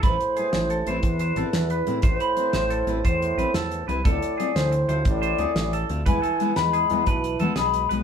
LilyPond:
<<
  \new Staff \with { instrumentName = "Flute" } { \time 12/8 \key a \minor \tempo 4. = 119 c''2. b'2. | c''2. c''2~ c''8 r8 | d''4. c''4. d''4. d''4 r8 | gis''4. b''4. a''4 r8 b''4 r8 | }
  \new Staff \with { instrumentName = "Clean electric guitar" } { \time 12/8 \key a \minor b''4 gis'4 a'8 c''4 c''8 a'4 b'4 | c''8 b''4 c''8 a'4 c''4 b'8 a'4 b'8 | a'4 gis'4 r8 c''4 c''8 gis'4 a'4 | b'8 a'4 b'8 gis'4 b'4 a'8 gis'4 b'8 | }
  \new Staff \with { instrumentName = "Steel-string acoustic guitar" } { \time 12/8 \key a \minor <e' b'>8 r8 <e' b'>8 r4 <c' e' b'>8 r4 <c' e' b'>8 r4 <c' e'>8 | r4 <c' b'>8 r4 <c' e' b'>8 r4 <c' b'>8 r4 <c' e' b'>8 | <c' f' a'>8 r8 <c' f' a'>8 r4 <c' f' a'>8 r4 <c' f' a'>8 r4 <c' f'>8 | <gis b e' b'>8 r8 <gis b e' b'>8 r4 <gis b e' b'>8 r4 <gis b e' b'>8 r4 <gis b b'>8 | }
  \new Staff \with { instrumentName = "Trombone" } { \clef bass \time 12/8 \key a \minor a,2. e,2. | a,2. a,2~ a,8 r8 | a,4. a,4. a,4. a,4 r8 | e4. gis4. e4 r8 gis4 r8 | }
  \new Staff \with { instrumentName = "Analog synth bass" } { \clef bass \time 12/8 \key a \minor a,,8 r4 a,,4 a,,8 e,4 a,,16 r16 e,4 a,8 | a,,8 r4 a,,4 a,,8 e,4 a,,16 r16 e,4 c,8 | d,8 r4 d,4 d,8 a,,4 d,16 r16 a,,4 d,8 | e,8 r4 e,4 e,8 b,,4 e,16 r16 b,,4 b,,8 | }
  \new DrumStaff \with { instrumentName = "Drums" } \drummode { \time 12/8 <hh bd>8 hh8 hh8 <hh sn>8 hh8 hh8 <hh bd>8 hh8 hh8 <hh sn>8 hh8 hh8 | <hh bd>8 hh8 hh8 <hh sn>8 hh8 hh8 <hh bd>8 hh8 hh8 <hh sn>8 hh8 hh8 | <hh bd>8 hh8 hh8 <hh sn>8 hh8 hh8 <hh bd>8 hh8 hh8 <hh sn>8 hh8 hh8 | <hh bd>8 hh8 hh8 <hh sn>8 hh8 hh8 <hh bd>8 hh8 hh8 <hh sn>8 hh8 hh8 | }
>>